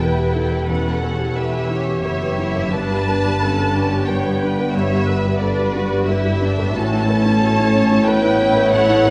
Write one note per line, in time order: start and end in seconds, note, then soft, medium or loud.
0.00 2.00 E1 soft
0.00 0.66 E2 soft
0.00 2.00 E2 soft
0.00 2.37 E2 soft
0.00 2.42 B3 soft
0.00 2.70 B3 medium
0.00 0.36 E4 soft
0.00 2.46 E4 soft
0.00 0.70 E4 soft
0.00 0.19 G4 soft
0.00 2.70 G4 medium
0.00 0.72 A4 soft
0.00 0.02 B4 soft
0.00 0.35 B4 medium
0.00 0.29 B4 soft
0.00 0.36 B4 soft
0.00 0.69 G5 medium
0.19 0.46 G4 soft
0.34 0.63 E4 soft
0.34 0.68 A4 soft
0.38 0.70 B4 soft
0.52 0.79 B4 soft
0.66 2.00 E2 soft
0.66 1.01 B4 medium
0.66 1.34 F#5 medium
0.71 2.03 C#4 soft
0.71 1.37 A4 soft
0.87 1.13 G4 soft
0.99 1.35 A4 soft
1.03 1.30 B4 soft
1.20 1.47 G4 soft
1.34 1.53 A4 soft
1.34 1.69 B4 soft
1.34 2.01 E5 medium
1.39 1.71 G4 soft
1.53 1.80 G4 soft
1.68 1.98 E4 soft
1.68 2.73 C#5 medium
1.74 2.73 G4 soft
1.88 2.15 G4 soft
2.02 2.73 F#1 soft
2.02 2.73 F#2 soft
2.02 2.32 B4 soft
2.02 2.71 E5 medium
2.06 2.40 B3 soft
2.22 2.50 G4 soft
2.39 2.67 E4 soft
2.39 2.74 E4 soft
2.56 6.46 G2 soft
2.56 2.73 B4 soft
2.60 6.50 B3 soft
2.65 6.55 D3 soft
2.70 6.75 G2 medium
2.70 6.60 G3 soft
2.70 6.58 G3 medium
2.70 6.58 B3 medium
2.70 4.06 B4 medium
2.70 4.06 A5 medium
2.74 6.75 G1 medium
2.74 4.69 G2 soft
2.74 3.41 D4 soft
2.74 3.08 B4 soft
2.91 3.18 G4 soft
3.08 3.34 B4 soft
3.08 3.41 B4 medium
3.25 3.51 G4 soft
3.42 4.08 C#4 soft
3.42 3.75 A4 soft
3.59 3.85 G4 soft
3.75 4.01 D4 soft
3.75 4.07 G4 soft
3.93 4.18 G4 soft
4.06 4.34 B4 soft
4.06 4.39 C#5 medium
4.06 4.73 G5 medium
4.10 4.75 B3 soft
4.10 4.75 B4 medium
4.27 4.51 G4 soft
4.41 4.68 D4 soft
4.41 4.73 B4 medium
4.59 4.84 B4 soft
4.72 5.07 C#5 medium
4.72 5.39 E5 medium
4.76 6.72 G2 medium
4.76 5.40 B3 medium
4.76 6.73 B4 medium
4.92 5.17 G4 soft
5.07 5.39 B4 medium
5.07 5.34 B4 soft
5.25 5.51 G4 soft
5.38 5.74 D4 medium
5.38 5.57 A4 soft
5.38 6.05 B4 medium
5.38 6.05 D5 medium
5.59 5.84 G4 soft
5.74 6.00 D4 soft
5.74 6.07 F#4 medium
5.93 6.18 G4 soft
6.04 6.75 G4 medium
6.04 6.73 E5 medium
6.09 6.42 E4 medium
6.09 6.35 B4 soft
6.25 6.52 G4 soft
6.41 6.69 D4 soft
6.41 6.76 D4 medium
6.57 9.10 A2 medium
6.57 6.75 B4 soft
6.62 9.10 B3 soft
6.66 9.10 C#5 soft
6.71 9.10 E4 soft
6.71 7.07 F#4 medium
6.71 8.07 A5 medium
6.75 9.10 A1 medium
6.75 9.10 A2 medium
6.75 8.70 A2 medium
6.75 9.10 B3 medium
6.75 8.08 C#4 medium
6.75 7.07 A4 medium
6.75 9.10 C#5 medium
6.93 7.19 E4 soft
7.06 7.40 E4 medium
7.06 8.06 A4 medium
7.06 7.35 B4 medium
7.25 7.51 E4 soft
7.40 7.58 F#4 soft
7.40 8.07 C#5 medium
7.59 7.85 E4 soft
7.75 8.01 C#4 soft
7.92 8.18 E4 soft
8.05 9.10 E4 medium
8.05 8.72 B4 medium
8.05 8.34 B4 medium
8.05 8.74 B4 medium
8.05 8.72 G5 medium
8.25 8.51 E4 soft
8.41 8.67 C#4 medium
8.57 8.83 B4 medium
8.71 9.10 A2 medium
8.71 9.04 A4 medium
8.71 9.10 F#5 loud
8.75 9.07 C#5 medium
8.90 9.10 E4 soft
9.05 9.10 A4 medium
9.05 9.10 B4 medium